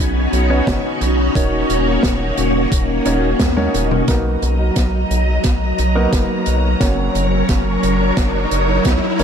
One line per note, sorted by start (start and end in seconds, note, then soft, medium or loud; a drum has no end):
0.00 0.27 B1 medium
0.00 1.33 B3 medium
0.00 0.46 C#4 medium
0.00 4.04 C#4 medium
0.00 0.46 D#4 medium
0.00 4.04 D#4 medium
0.00 0.46 F#4 medium
0.00 4.04 F#4 medium
0.00 0.46 B4 medium
0.00 0.46 C#5 medium
0.00 4.04 C#5 medium
0.00 closed hi-hat medium
0.33 0.61 B1 medium
0.33 closed hi-hat medium
0.50 1.31 C#4 loud
0.50 1.31 D#4 medium
0.50 1.31 F#4 medium
0.50 1.31 B4 medium
0.50 1.31 C#5 loud
0.67 0.81 F#1 medium
0.67 kick loud
0.67 snare loud
0.67 closed hi-hat loud
1.01 1.30 B1 medium
1.01 closed hi-hat medium
1.35 1.64 D#1 loud
1.35 4.06 A#3 medium
1.35 3.02 C#4 medium
1.35 3.02 D#4 medium
1.35 3.02 F#4 medium
1.35 3.02 A#4 medium
1.35 3.02 C#5 medium
1.35 kick loud
1.35 closed hi-hat medium
1.69 1.98 D#1 medium
1.69 closed hi-hat medium
2.03 2.32 D#1 medium
2.03 kick loud
2.03 snare loud
2.03 closed hi-hat loud
2.37 2.66 D#1 medium
2.37 closed hi-hat medium
2.72 3.00 D#1 medium
2.72 kick loud
2.72 closed hi-hat loud
3.05 3.34 D#1 medium
3.05 3.25 C#4 medium
3.05 3.25 D#4 medium
3.05 3.25 F#4 medium
3.05 3.25 A#4 medium
3.05 3.25 C#5 loud
3.05 closed hi-hat medium
3.40 3.68 D#2 medium
3.40 kick loud
3.40 snare loud
3.40 closed hi-hat loud
3.40 high tom medium
3.57 4.04 C#4 medium
3.57 4.04 D#4 medium
3.57 4.04 F#4 medium
3.57 4.04 A#4 medium
3.57 4.04 C#5 medium
3.57 high tom medium
3.74 4.03 D#1 medium
3.74 closed hi-hat medium
3.91 mid tom medium
4.08 4.37 B1 medium
4.08 9.24 F#3 medium
4.08 5.91 A#3 medium
4.08 5.91 B3 medium
4.08 5.91 D#4 medium
4.08 5.91 F#4 medium
4.08 5.91 A#4 medium
4.08 6.78 D#5 medium
4.08 9.24 A#5 medium
4.08 kick loud
4.08 snare soft
4.08 closed hi-hat loud
4.08 riser medium
4.42 4.71 B1 medium
4.42 closed hi-hat medium
4.76 5.05 B1 medium
4.76 kick loud
4.76 snare medium
4.76 closed hi-hat loud
5.11 5.39 B1 loud
5.11 closed hi-hat medium
5.44 5.73 B1 medium
5.44 kick loud
5.44 snare soft
5.44 closed hi-hat loud
5.78 6.07 B1 medium
5.78 closed hi-hat medium
5.95 6.77 A#3 medium
5.95 6.77 B3 medium
5.95 6.77 D#4 medium
5.95 6.77 F#4 medium
5.95 6.77 A#4 loud
6.13 6.27 F#1 medium
6.13 kick loud
6.13 snare medium
6.13 closed hi-hat loud
6.46 6.75 B1 medium
6.46 closed hi-hat medium
6.80 7.09 F#1 loud
6.80 9.15 A#3 medium
6.80 9.15 C#4 medium
6.80 9.15 F#4 medium
6.80 9.15 A#4 medium
6.80 9.24 A#4 medium
6.80 9.15 C#5 medium
6.80 9.24 C#5 medium
6.80 kick loud
6.80 snare medium
6.80 closed hi-hat loud
7.15 7.43 F#1 medium
7.15 closed hi-hat medium
7.49 7.77 F#1 medium
7.49 kick loud
7.49 snare medium
7.49 closed hi-hat medium
7.83 8.12 F#1 loud
7.83 closed hi-hat medium
8.17 8.46 F#1 medium
8.17 kick loud
8.17 snare medium
8.17 closed hi-hat loud
8.51 8.80 F#1 medium
8.51 closed hi-hat medium
8.85 9.00 C#2 medium
8.85 kick loud
8.85 snare medium
8.85 closed hi-hat medium
9.19 9.24 F#1 medium
9.19 9.24 A#3 medium
9.19 9.24 C#4 medium
9.19 9.24 F#4 medium
9.19 9.24 A#4 medium
9.19 9.24 C#5 loud
9.19 closed hi-hat medium